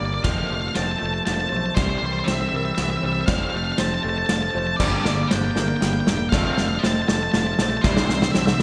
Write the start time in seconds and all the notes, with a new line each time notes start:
Already playing: D3 G3 A#3 D4 G4 A#4
0.00 G1 G2 D3 A#3 D5
0.05 D5
0.14 D5
0.23 F1 F2 F3 A3 C4 A4 C5 D5 F5, kick, snare, ride
0.32 F5
0.38 F5
0.47 F1 F3 A3 F5
0.54 F5
0.61 F5
0.68 F5
0.75 F1 F3 A3 C4 C5 A5, snare, ride
0.82 A5
0.92 A5
0.99 F1 F3 A3 A4 A5
1.06 A5
1.14 A5
1.25 F1 F3 A3 A5, snare, ride
1.34 A5
1.41 A5
1.49 B1 F3 A3 C5 A5
1.57 A5
1.66 A5
1.75 C2 C3 E3 G3 G4 C5 D5, kick, snare, ride
1.82 C5
1.89 C5
1.98 C5
2.02 C2 C3 E3 G3 C5
2.13 C5
2.19 C5
2.24 C3 E3 C4 C5 E5, snare, ride
2.28 C2 E5
2.41 E5
2.49 C3 E3 A#4 E5
2.53 C2 G3 E5
2.65 E5
2.75 C2 C3 E3 E5, snare, ride
2.82 E5
2.90 E5
2.97 C5 E5
3.03 C2 C3 E3 G3 E5
3.13 E5
3.21 E5
3.26 F1 F2 F3 A3 C4 A4 C5 D5 F5, kick, snare, ride
3.33 F5
3.41 F5
3.50 F3 A3 F5
3.54 F1 F5
3.64 F5
3.72 F5
3.78 F1 F3 A3 C4 C5 A5, snare, ride
3.86 A5
3.94 A5
4.03 F1 F3 A3 A4 A5
4.09 A5
4.18 A5
4.26 F1 F3 A3 A5, snare, ride
4.36 A5
4.42 A5
4.50 F3 A3 A5
4.55 F1 C5 A5
4.67 A5
4.77 G1 G2 G3 A#3 D5, kick, snare, crash
4.81 D3 G3 D4 A#4 D5
4.85 D5
4.92 D5
5.00 D5
5.05 G1 G2 D3 G3 A#3 D5, snare
5.15 D5
5.23 D5
5.28 G2 D3 G3 A#3 D4 C5 G5, snare, ride
5.32 G1
5.36 G5
5.45 G5
5.51 A#4 G5
5.56 G1 G2 D3 G3 A#3 G5, snare
5.68 G5
5.77 G5
5.81 G1 G2 D3 G3 A#3 G5, snare, ride
5.93 G5
6.00 G5
6.06 E1 G2 D3 G3 A#3 D5 G5, snare
6.18 G5
6.29 F1 F2 F3 C4 A4 C5 D5 F5, kick, snare
6.33 F3 A3 C4 F5
6.45 F5
6.52 F5
6.58 F1 F3 A3 F5, snare
6.68 F5
6.75 F5 A5
6.83 F1 F3 A3 C4 C5 A5, snare
6.93 A5
7.02 A5
7.08 F1 F3 A3 A4 A5, snare
7.17 A5
7.23 A5
7.32 F1 F3 A3 A5, snare
7.39 A5
7.47 A5
7.55 A5
7.59 A#1 F3 A3 C5 A5, snare
7.70 A5
7.77 A5
7.81 C2 C3 E3 G3 C5, kick, snare
7.85 E3 G4 C5 D5
7.97 C5, snare
8.05 C5, snare
8.10 C2 C3 E3 G3 C5
8.22 C5, snare
8.31 C3 E3 C4 C5 E5, snare
8.36 C2 E5
8.46 E5, snare
8.54 E5
8.59 C3